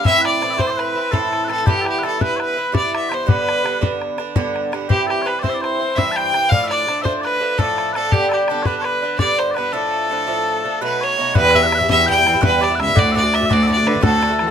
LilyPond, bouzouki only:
\new Staff \with { instrumentName = "Bouzouki" } { \time 9/8 \key d \dorian \tempo 4. = 111 <a, e c' e'>4 <a, e c' e'>8 <a, e c' e'>4 <e c' e'>8 <a, e c' e'>4 <a, e c' e'>8 | <g, e b e'>4 <g, e b e'>8 <g, e b e'>4 <e b e'>8 <g, e b e'>4 <g, e b e'>8 | <g, d b d'>4 <g, d b d'>8 <g, d b d'>4 <d b d'>8 <g, d b d'>4 <g, d b d'>8 | <g, e c' e'>4 <g, e c' e'>8 <g, e c' e'>4 <e c' e'>8 <g, e c' e'>4 <g, e c' e'>8 |
<a, f a d'>4 <a, f a d'>8 <a, f a d'>4 <f a d'>8 <a, f a d'>4 <a, f a d'>8 | <g, d b d'>4 <g, d b d'>8 <g, d b d'>4 <d b d'>8 <g, d b d'>4 <g, d b d'>8 | <a, f a d'>4 <a, f a d'>8 <a, f a d'>4 <f a d'>8 <b, fis a dis'>4 <b, fis a dis'>8 | \key e \minor <g, g b e'>8 <g, g b e'>16 <g b e'>8 <g b e'>16 <g, g b e'>8 <g, g b e'>16 <g b e'>8 <g b e'>16 <g, g b e'>8 <g, g b e'>16 <g b e'>8 <g b e'>16 |
<a, d a fis'>8 <a, d a fis'>16 <d a fis'>8 <d a fis'>16 <a, d a fis'>8 <a, d a fis'>16 <d a fis'>8 <d a fis'>16 <a, d a fis'>8 <a, d a fis'>16 <d a fis'>8 fis'16 | }